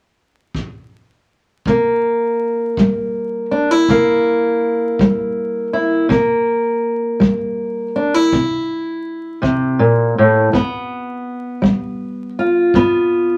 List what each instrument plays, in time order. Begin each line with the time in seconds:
0.55 kick
1.66 steel-string acoustic guitar C3 A#3, kick
2.77 steel-string acoustic guitar G3, kick
3.51 steel-string acoustic guitar D4
3.71 steel-string acoustic guitar E4
3.88 steel-string acoustic guitar C3 A#3, kick
4.99 steel-string acoustic guitar G3, kick
5.73 steel-string acoustic guitar E4
6.09 steel-string acoustic guitar C3 A#3, kick
7.20 steel-string acoustic guitar G3, kick
7.96 steel-string acoustic guitar D4
8.14 steel-string acoustic guitar E4
8.32 steel-string acoustic guitar C3, kick
9.42 steel-string acoustic guitar C3, kick
9.79 steel-string acoustic guitar A#2
10.18 steel-string acoustic guitar A2
10.53 steel-string acoustic guitar G2 B3, kick
11.62 steel-string acoustic guitar G3, kick
12.39 steel-string acoustic guitar F4
12.74 steel-string acoustic guitar G2 B3, kick